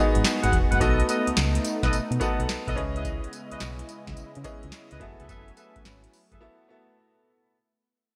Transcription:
Already playing: G#3 B3 D#4 F#4 G#4 D#5
0.15 G#1, closed hi-hat
0.24 snare, clap, closed hi-hat, tambourine
0.43 G#1 G#4 B4 F#5, closed hi-hat
0.52 E1, kick, closed hi-hat
0.71 F#1 G#4 B4 F#5, closed hi-hat
0.80 B1 A3 B3 D#4 F#4 A4 B4 D#5, kick, closed hi-hat, tambourine
1.00 closed hi-hat
1.08 A4 B4 D#5, closed hi-hat, tambourine
1.27 C#2, closed hi-hat
1.37 C#2, snare, clap, closed hi-hat, tambourine
1.55 closed hi-hat
1.65 closed hi-hat, tambourine
1.83 B1 A4 B4 D#5, kick, snare, closed hi-hat
1.93 B2, closed hi-hat, tambourine
2.11 B2, closed hi-hat
2.20 B3 D#4 F#4 A4 B4 D#5 F#5, kick, closed hi-hat, tambourine
2.39 B1, closed hi-hat
2.49 snare, clap, closed hi-hat, tambourine
2.67 B1 A4 B4 D#5, kick, closed hi-hat
2.75 C#2 C#3 G#3 B3 C#4 E4 G#4 B4 D#5, kick, closed hi-hat
2.95 E4 B4 D#5, closed hi-hat
3.05 kick, closed hi-hat, tambourine
3.24 closed hi-hat
3.33 closed hi-hat, tambourine
3.51 B1 E4 B4 D#5, closed hi-hat
3.60 B1, snare, clap, closed hi-hat, tambourine
3.79 closed hi-hat
3.89 closed hi-hat, tambourine
4.07 C#2, kick, snare, closed hi-hat
4.17 C#3, closed hi-hat, tambourine
4.35 C#3, closed hi-hat
4.44 C#4 E4 G#4 B4 D#5, kick, closed hi-hat, tambourine
4.63 C#2, closed hi-hat
4.72 snare, clap, closed hi-hat, tambourine
4.91 C#2 E4 B4 D#5, closed hi-hat
5.00 F#1 F#3 A3 B3 C#4 F#4 G#4 A4 B4 E5 G#5, kick, closed hi-hat
5.19 C#2 G#4 A4 B4 E5, closed hi-hat
5.28 F#1 G#4 A4 B4 E5, kick, closed hi-hat, tambourine
5.48 closed hi-hat
5.57 G#4 A4 B4 E5, closed hi-hat, tambourine
5.76 G#1, kick, closed hi-hat
5.85 G#1, snare, clap, closed hi-hat, tambourine
6.04 closed hi-hat
6.13 open hi-hat, tambourine
6.31 F#1 G#4 A4 B4 E5, kick, closed hi-hat
6.41 A3 B3 E4 F#4 A4 E5
6.69 B3 E4 F#4 A4 E5

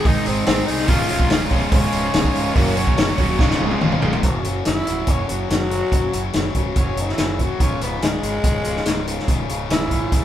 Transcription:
Already playing: G#2 D#3 G#3 C4 D#4 G#4
0.05 G#1 G#2 D#3 G#3 C4 D#4 G#4, kick, open hi-hat
0.25 G#1 G#3 C4 D#4 G#4, open hi-hat
0.46 G#1 G#2 D#3 G#3 C4 D#4 G#4, snare, open hi-hat
0.67 C2 G#3 C4 D#4 G#4, open hi-hat
0.79 snare
0.87 C#1 C#2 G#2 C#3 F3 G#3 C#4 F4, kick, open hi-hat
1.09 C#1 C#3 G#3 C#4 F4, open hi-hat
1.20 kick
1.29 C#1 C#2 G#2 C#3 F3 G#3 C#4 F4, snare, open hi-hat
1.50 C#1 G#2 C#3 G#3 C#4 F4, kick, open hi-hat
1.54 C#2
1.71 C#1 C#3 F3 G#3 C#4 F4, kick, open hi-hat
1.93 C#1 C#3 G#3 C#4 F4, open hi-hat
2.14 C#1 C#2 G#2 C#3 F3 G#3 C#4 F4, snare, open hi-hat
2.24 kick
2.33 C#1 C#3 G#3 C#4 F4, open hi-hat
2.55 F#1 F#2 C#3 F#3 A#3 C#4 F#4, kick, open hi-hat
2.76 F#3 A#3 C#4 F#4, open hi-hat
2.87 kick
2.96 F#1 F#2 C#3 F#3 A#3 C#4 F#4, snare, open hi-hat
3.18 D#1 F#2 C#3 F#3 A#3 C#4 F#4, kick, open hi-hat
3.39 C#1 C#2 G#2 C#3 F3 G#3 C#4 F4, kick, snare
3.50 snare
3.59 C#1 C#3 G#3 C#4 F4, high tom
3.71 high tom
3.81 C#1 C#2 G#2 C#3 F3 G#3 C#4 F4, mid tom
3.92 mid tom
4.02 C#1 C#2 G#2 C#3 G#3 C#4 F4, floor tom
4.13 floor tom
4.22 F#1 F#2 C#3 F#3 A#3 C#4 F#4, kick, closed hi-hat
4.43 F#1 F#2 C#3 F#3 A#3 C#4 F#4, closed hi-hat
4.63 F#1 F#2 C#3 F#3 A#3 C#4, snare, closed hi-hat
4.67 E4
4.85 C#1 F#2 C#3 F#3 A#3 C#4 F#4, closed hi-hat
5.05 F#1 F#2 C#3 F#3 A#3 C#4 F#4, kick, closed hi-hat
5.10 C#4
5.27 F#1 F#2 C#3 F#3 A#3 C#4 F#4, closed hi-hat
5.49 F#1 F#2 C#3 F#3 A#3 C#4, snare, closed hi-hat
5.69 F#2 C#3 F#3 A#3 C#4 F#4, closed hi-hat
5.90 F#1 F#2 C#3 F#3 A#3 C#4 F#4, kick, closed hi-hat
6.12 F#1 F#2 C#3 F#3 A#3 C#4 F#4, closed hi-hat
6.33 F#1 F#2 C#3 F#3 A#3 C#4 F#4, snare, closed hi-hat
6.55 C#1 F#2 C#3 F#3 A#3 C#4 F#4, kick, closed hi-hat
6.76 F#1 F#2 C#3 F#3 A#3 C#4 F#4, kick, closed hi-hat
6.96 F#1 F#2 C#3 F#3 A#3 C#4 F#4, closed hi-hat
7.00 E4
7.08 snare
7.18 F#1 F#2 C#3 F#3 A#3 C#4 F#4, snare, closed hi-hat
7.39 F#2 C#3 F#3 A#3 C#4 F#4, kick, closed hi-hat
7.59 C#1 C#2 G#2 C#3 F3 G#3 C#4 D#4 F4, kick, closed hi-hat
7.80 C#1 C#2 G#2 C#3 G#3 B3 D#4 F4, closed hi-hat
8.01 C#1 C#2 G#2 C#3 F3 G#3 D#4, snare, closed hi-hat
8.23 G#1 C#2 G#2 C#3 G#3 D#4 F4, closed hi-hat
8.43 C#1 C#2 G#2 C#3 F3 G#3 D#4 F4, kick, closed hi-hat
8.64 C#1 C#2 G#2 C#3 G#3 D#4 F4, closed hi-hat
8.76 snare
8.84 C#1 C#2 G#2 C#3 F3 G#3 D#4 F4, snare, closed hi-hat
9.04 C#2 G#2 C#3 G#3 D#4 F4, closed hi-hat
9.19 snare
9.26 C#1 C#2 G#2 C#3 F3 G#3 D#4 F4, kick, closed hi-hat
9.47 C#1 C#2 G#2 C#3 G#3 D#4 F4, closed hi-hat
9.70 C#1 C#2 G#2 C#3 F3 G#3 D#4 E4 F4, snare, closed hi-hat
9.90 G#1 C#2 G#2 C#3 G#3 D#4 F4, kick, closed hi-hat
10.11 C#1 C#2 G#2 C#3 F3 G#3 D#4 E4 F4, kick, closed hi-hat

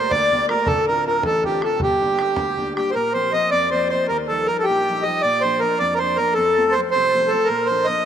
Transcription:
Already playing: G1 A3 A#3 G4 C5
0.10 D2 D5, bodhran
0.31 A3 A#3 G4, bodhran
0.49 A3 A#3 G4 A#4, bodhran
0.66 D1 D2 A4, bodhran
0.77 bodhran
0.87 C4 D4 F4 A#4, bodhran
1.07 C4 D4 F4 A#4
1.23 A1 A4, bodhran
1.44 C4 D4 F4 G4, bodhran
1.62 C4 D4 F4 A4, bodhran
1.80 G1 G2 G4, bodhran
1.91 bodhran
2.00 G3 A#3 D4, bodhran
2.18 G3 A#3 D4, bodhran
2.36 D2, bodhran
2.57 G3 A#3 D4, bodhran
2.75 G3 A#3 D4 G4, bodhran
2.91 A#4 C5
2.95 A#2
3.13 F3 A#3 C4 C5
3.32 F3 A#3 C4 D#5
3.51 F2 D5
3.71 F3 A#3 C4 C5
3.90 F3 A#3 C4 C5
4.08 D#2 A#4
4.28 F3 G3 D#4 A4
4.46 F3 G3 A#4
4.50 D#4
4.59 A4
4.64 G4
4.69 A#1
4.89 F3 G3 D#4
5.02 F3 G3 D#5
5.07 D#4
5.22 A#2 D5
5.41 F3 A#3 D4 C5
5.60 F3 A#3 D4 A#4
5.78 F2 D5
5.93 A#4 D5
5.99 F3 A#3 D4 C5
6.17 F3 A#3 D4 A#4
6.34 F2 A4
6.57 F3 A3 C4
6.72 C5
6.76 F3 A3 C4
6.91 C5
6.96 C2
7.15 F3 A3 C4
7.28 A4
7.32 F3 A3 C4
7.45 A#4
7.50 A#2 A#4
7.66 F3 C5
7.70 A#3 D4
7.84 F3 A#3 D#5
7.89 D4

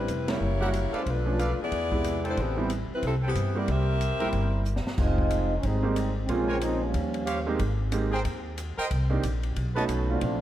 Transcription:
Already playing: G3 C4 E4 B4
0.08 F1, hi-hat pedal, ride
0.28 G3 A#3 C#4 E4 G4 C#5, snare, ride
0.40 F#1
0.60 G3 A#3 C#4 F#4 G4 A#4 E5 F#5
0.73 hi-hat pedal, ride
0.92 A4 B4 C5 D5 F5, muted upright bass stroke, ride
0.97 G#3 C#4 E4
1.06 B1 A3 D4 F4 B4, kick, ride
1.26 F3 A3 C#4 D4
1.38 A4 B4 D5 F5, hi-hat pedal, ride
1.59 B3 G#4 D5, muted upright bass stroke
1.63 E4
1.72 E2, kick, ride
1.91 C3 G#3 B3 E4, kick
2.04 hi-hat pedal, ride
2.24 A4 B4 C5 G5, ride
2.29 G#3 D4 E4 C5
2.37 A1 B3, kick, ride
2.41 E3 C4 G4
2.57 G3 B3 C4 E4
2.70 hi-hat pedal, ride
2.90 C4 E4, muted upright bass stroke
2.94 G3 B4
3.03 C2 G3 C4 E4 A4, kick, ride
3.22 A4 B4 C5 G5
3.26 E3 B3 C4 G4
3.35 G2, hi-hat pedal, ride
3.55 G3 A#3 B3 C4 E4 G4 D5
3.68 C2 C4 G4 A#4 E5, kick, ride
4.01 hi-hat pedal, ride
4.11 E2
4.20 A#1 G3 A#3 C4 E4 A#4 C5 E5 G5, ride
4.33 G1, kick, ride
4.65 hi-hat pedal
4.76 snare
4.85 muted upright bass stroke, snare
4.98 F1 G#3 C4 D#4 F4, kick, snare, crash
5.18 kick
5.31 hi-hat pedal, ride
5.58 C#4
5.63 G#1 G3 G#3 C4 D#4, kick, ride
5.82 G#3 A#3 C4 D#4 G4
5.96 hi-hat pedal, ride
6.26 A#1 G#3 A#3 C4, kick, ride
6.30 C3 F3 G#3 C#4 F4
6.49 C#3 F3 G#3 C4 A#4 C5 C#5 G#5
6.61 F3 G#3 C4 D#4, hi-hat pedal, ride
6.84 F3 G3 A#3 C#4
6.94 D#2, kick, ride
7.14 ride
7.26 G4 C5 C#5 F5, hi-hat pedal, ride
7.46 G#3 A#3 C4 D#4 G4
7.59 G#1, kick, ride
7.92 G#3 A#3 C4 D#4 G4, hi-hat pedal, ride
8.12 G#4 A#4 C5 G5
8.25 D#2, kick, ride
8.58 hi-hat pedal, ride
8.78 A#4 C5 D#5 G5, muted upright bass stroke
8.91 C2, kick, ride
9.10 A#3 C4 D4 D#4 G4
9.23 A#1, hi-hat pedal, ride
9.43 ride
9.56 B1, kick, ride
9.75 A3 B3 C#4 D#4 F#4 B4 C#5 D#5 A5
9.88 B1, hi-hat pedal, ride
10.10 A3 C4 D4 F4
10.21 A#1, kick, ride

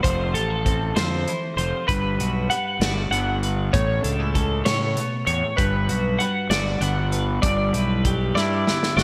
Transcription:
0.03 F1 F3 C5, kick, closed hi-hat
0.34 A1 G4 A4, closed hi-hat
0.50 A4
0.65 C4 A4, kick, closed hi-hat
0.96 F2 D3 C5, snare, closed hi-hat
1.28 E3, closed hi-hat
1.57 F1 F3 C5, closed hi-hat
1.88 G1 G2 B4, kick, closed hi-hat
2.19 B1 F#4, closed hi-hat
2.50 G3 B4 F#5, closed hi-hat
2.80 G1 F#4 D5, snare, closed hi-hat
3.10 G1 D3 B3 F#5, closed hi-hat
3.43 B4, closed hi-hat
3.73 A1 A2 C#5, kick, closed hi-hat
4.03 C#2 D4 A4, closed hi-hat
4.20 E4
4.34 A3 A4, kick, closed hi-hat
4.65 A2 C#3 C#5, snare, closed hi-hat
4.95 B2, closed hi-hat
5.26 E2 A2 C#5, closed hi-hat
5.57 G1 G2 B4, kick, closed hi-hat
5.88 B1 F#4, closed hi-hat
6.19 G3 B4 F#5, closed hi-hat
6.50 G1 F#4 D5, snare, closed hi-hat
6.80 G1 D3 B3 F#5, closed hi-hat
7.12 B4, closed hi-hat
7.42 G1 G2 D5, kick, closed hi-hat
7.73 B1 E4 B4, closed hi-hat
8.05 G3 G4, kick, closed hi-hat
8.35 G2 E4 D5, snare
8.67 D3 B3, snare
8.83 snare
8.97 G1 F#4 G4 D5, snare

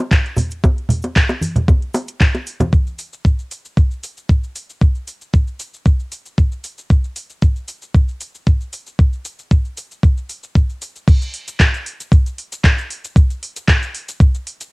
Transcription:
0.12 kick, clap, closed hi-hat, cabasa
0.26 closed hi-hat
0.37 open hi-hat, high bongo, low conga, cabasa
0.51 closed hi-hat, cabasa
0.64 kick, closed hi-hat, high bongo, cabasa
0.78 closed hi-hat
0.89 open hi-hat, low conga, cabasa
1.02 closed hi-hat, high bongo, cabasa
1.16 kick, clap, closed hi-hat, cabasa
1.29 closed hi-hat, high bongo
1.41 open hi-hat, high conga, cabasa
1.56 closed hi-hat, low conga, cabasa
1.68 kick, closed hi-hat, high bongo, cabasa
1.82 closed hi-hat
1.94 open hi-hat, high bongo, cabasa
2.08 closed hi-hat, cabasa
2.20 kick, clap, closed hi-hat, cabasa
2.35 closed hi-hat, high bongo
2.47 open hi-hat, cabasa
2.60 closed hi-hat, high bongo, high conga, low conga, cabasa
2.73 kick, shaker
2.87 shaker
2.99 open hi-hat, shaker
3.13 shaker
3.25 kick, shaker
3.39 shaker
3.51 open hi-hat, shaker
3.65 shaker
3.77 kick, shaker
3.91 shaker
4.03 open hi-hat, shaker
4.17 shaker
4.29 kick, shaker
4.44 shaker
4.56 open hi-hat, shaker
4.70 shaker
4.82 kick, shaker
4.95 shaker
5.08 open hi-hat, shaker
5.21 shaker
5.34 kick, shaker
5.47 shaker
5.60 open hi-hat, shaker
5.74 shaker
5.86 kick, shaker
6.00 shaker
6.12 open hi-hat, shaker
6.26 shaker
6.38 kick, shaker
6.52 shaker
6.64 open hi-hat, shaker
6.78 shaker
6.90 kick, shaker
7.04 shaker
7.16 open hi-hat, shaker
7.30 shaker
7.42 kick, shaker
7.56 shaker
7.68 open hi-hat, shaker
7.82 shaker
7.95 kick, shaker
8.08 shaker
8.21 open hi-hat, shaker
8.35 shaker
8.47 kick, shaker
8.61 shaker
8.73 open hi-hat, shaker
8.86 shaker
8.99 kick, shaker
9.13 shaker
9.25 open hi-hat, shaker
9.39 shaker
9.51 kick, shaker
9.65 shaker
9.77 open hi-hat, shaker
9.91 shaker
10.03 kick, shaker
10.18 shaker
10.30 open hi-hat, shaker
10.43 shaker
10.55 kick, shaker
10.70 shaker
10.82 open hi-hat, shaker
10.96 shaker
11.08 kick, closed hi-hat, crash, shaker
11.22 closed hi-hat, shaker
11.34 open hi-hat
11.48 closed hi-hat, shaker
11.60 kick, clap, closed hi-hat, shaker
11.74 closed hi-hat, shaker
11.86 open hi-hat
12.00 closed hi-hat, shaker
12.12 kick, closed hi-hat, shaker
12.26 closed hi-hat, shaker
12.38 open hi-hat
12.52 closed hi-hat, shaker
12.64 kick, clap, closed hi-hat, shaker
12.78 closed hi-hat, shaker
12.90 open hi-hat
13.05 closed hi-hat, shaker
13.16 kick, closed hi-hat, shaker
13.30 closed hi-hat, shaker
13.43 open hi-hat
13.56 closed hi-hat, shaker
13.68 kick, clap, closed hi-hat, shaker
13.83 closed hi-hat, shaker
13.95 open hi-hat
14.09 closed hi-hat, shaker
14.20 kick, closed hi-hat, shaker
14.35 closed hi-hat, shaker
14.47 open hi-hat
14.61 closed hi-hat, shaker

